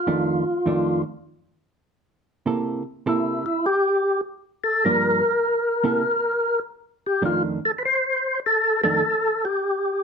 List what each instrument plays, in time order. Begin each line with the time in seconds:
Already playing: tonewheel organ F4
0.07 hollow-body jazz guitar F2 D#3 A3 D4
0.66 hollow-body jazz guitar F2 D#3 A3 D4
2.46 hollow-body jazz guitar C3 A#3 E4 A4
3.06 hollow-body jazz guitar C3 A#3 E4 A4, tonewheel organ E4
3.46 tonewheel organ E4
3.66 tonewheel organ G4
4.64 tonewheel organ A4
4.85 hollow-body jazz guitar G2 F3 A#3 D4, tonewheel organ A#4
5.84 hollow-body jazz guitar C3 A#3 E4 A4
7.06 tonewheel organ G4
7.22 hollow-body jazz guitar F2 D#3 A3 D4, tonewheel organ F4
7.65 tonewheel organ A4
7.78 tonewheel organ B4
7.85 tonewheel organ C5
8.46 tonewheel organ A4
8.83 hollow-body jazz guitar F2 D#3 A3 D4, tonewheel organ A4
9.45 tonewheel organ G4